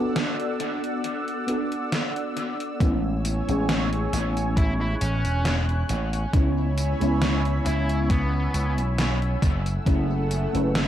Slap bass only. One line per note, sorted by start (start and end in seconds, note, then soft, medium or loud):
2.81 3.40 A1 loud
3.49 4.05 A1 medium
4.13 4.94 A1 medium
5.01 5.25 A1 medium
5.25 5.82 E1 loud
5.90 6.24 A1 medium
6.34 6.93 C#2 medium
7.01 7.58 C#2 medium
7.66 8.47 C#2 medium
8.54 8.78 C#2 medium
8.78 9.35 B1 loud
9.42 9.77 F#1 loud
9.86 10.46 F#1 medium
10.54 10.88 F#1 medium